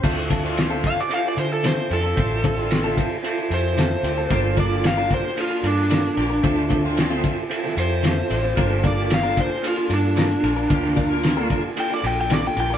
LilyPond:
<<
  \new Staff \with { instrumentName = "Electric slide guitar" } { \time 4/4 \key d \minor \tempo 4 = 112 r4. f''16 d''16 f''16 d''16 c''16 a'16 c''8 a'8~ | a'4. r4 c''4.~ | c''8 d''8 f''8 c''8 f'8 d'4.~ | d'4. r4 c''4.~ |
c''8 d''8 f''8 c''8 f'8 d'4.~ | d'4. r8 g''16 d''16 g''16 g''16 d''16 g''16 g''16 d''16 | }
  \new Staff \with { instrumentName = "Tonewheel organ" } { \time 4/4 \key d \minor <c' e' f' a'>4 r16 <c' e' f' a'>8. <c' e' f' a'>4.~ <c' e' f' a'>16 r16 | <c' e' f' c''>4 r16 <c' e' f' a'>8. <c' e' f' a'>4.~ <c' e' f' a'>16 r16 | <bes d' f' a'>4 r16 <bes d' f' a'>8. <bes d' f' a'>4.~ <bes d' f' a'>16 r16 | <c' e' f' a'>4 r16 <c' e' f' a'>8. <c' e' f' a'>4.~ <c' e' f' a'>16 r16 |
<bes d' f' a'>4 r16 <bes d' f' a'>8. <bes d' f' a'>4.~ <bes d' f' a'>16 r16 | <bes d' f' bes'>4 r16 <bes d' f' a'>8. <bes d' f' a'>4.~ <bes d' f' a'>16 r16 | }
  \new Staff \with { instrumentName = "Horn section" } { \time 4/4 \key d \minor <c' d' f'>8 r16 <c' d' f'>4 r4. r16 <c' d' f'>16 r16 | <c' d' f'>8 r16 <c' d' f'>4 r4. r16 <c' d' g'>16 r16 | <bes f' g'>8 r16 <bes f' g'>4 r4. r16 <bes f' g'>16 r16 | <c' d' f'>8 r16 <c' d' f'>4 r4. r16 <c' d' f'>16 r16 |
<bes f' g'>8 r16 <bes f' g'>4 r4. r16 <bes f' bes'>16 r16 | <bes f' g'>8 r16 <bes f' bes'>4 r4. r16 <bes f' g'>16 r16 | }
  \new Staff \with { instrumentName = "Clean electric guitar" } { \time 4/4 \key d \minor <d c' f' a'>16 r16 <d c' f' a'>16 r8 <d c' f' a'>16 <d c' f' a'>16 r4 r16 <d c' f' a'>16 r8 <c' f' a'>16 | r8 <d c' f' a'>16 r8 <d c' f' a'>16 <d c' f' a'>16 r4 r16 <d c' f' a'>16 r8 <c' f' a'>16 | <g d' f' bes'>16 r16 <g d' f' bes'>16 r8 <g d' f' bes'>16 <g d' f' bes'>16 r4 r16 <g d' f' bes'>16 r8 <d' f' bes'>16 | <d a c' f'>16 r16 <d a c' f'>16 r8 <d a c' f'>16 <d a c' f'>16 r4 r16 <d a c' f'>16 r8 <a c' f'>16 |
<g d' f' bes'>16 r16 <g d' f' bes'>16 r8 <g d' f' bes'>16 <g d' f' bes'>16 r4 r16 <g d' f' bes'>16 r8 <d' f' bes'>16 | r8 <g d' f' bes'>16 r8 <g d' f' bes'>16 <g d' f' bes'>16 r4 r16 <g d' f' bes'>16 r8 <d' f' bes'>16 | }
  \new Staff \with { instrumentName = "Fingered electric bass" } { \clef bass \time 4/4 \key d \minor d,2 r8 d4 f,8 | a,,2 r8 f,4 d,8 | g,,2 r8 g,4 bes,,8 | d,2 r8 f,4 a,,8 |
g,,2 r8 g,4 bes,,8 | d,2 r8 bes,,4 bes,,8 | }
  \new DrumStaff \with { instrumentName = "Drums" } \drummode { \time 4/4 <cymc bd>8 <bd cymr>8 <cymr sn>8 <bd cymr>8 cymr8 cymr8 <cymr sn>8 cymr8 | <bd cymr>8 <bd cymr>8 <cymr sn>8 <bd cymr>8 cymr8 cymr8 <cymr sn>8 cymr8 | <bd cymr>8 <bd cymr>8 <cymr sn>8 <bd cymr>8 cymr8 cymr8 <cymr sn>8 cymr8 | <bd cymr>8 <bd cymr>8 <cymr sn>8 <bd cymr>8 cymr16 sn16 cymr8 <cymr sn>8 cymr8 |
<bd cymr>8 <bd cymr>8 <cymr sn>8 <bd cymr>8 cymr8 cymr8 <cymr sn>8 cymr8 | <bd cymr>16 sn16 <bd cymr>8 <cymr sn>8 <bd cymr>8 cymr8 cymr8 <cymr sn>8 cymr8 | }
>>